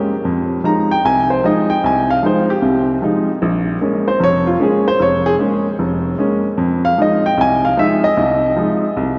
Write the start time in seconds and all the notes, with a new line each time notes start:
Already playing: G#3 A#3 C#4 G4
0.25 F2
0.64 F3 G#3 D#4 A#5
0.91 G5
1.05 C2 G#5
1.30 C5
1.44 F3 G#3 D#4 D#5
1.70 G5
1.84 C2 G#5
2.10 F5
2.23 F3 G#3 D#4 C5
2.50 G4
2.62 C2 C3
3.02 F3 G#3 D#4
3.42 A#1
3.81 G#3 A#3 C#4
4.08 C5
4.20 F1 F2 C#5
4.47 F4
4.60 G#3 A#3 C#4 G#4
4.88 C5
5.00 F1 C#5
5.26 G#4
5.39 G#3 A#3 C#4
5.79 F1
6.19 G#3 A#3 C#4
6.58 F2
6.85 F5
6.98 F3 G#3 D#4 D#5
7.26 G5
7.38 C2 G#5
7.65 F5
7.77 F3 G#3 D#4 E5
8.04 D#5
8.17 C2 C3
8.56 F3 G#3 D#4
8.97 C2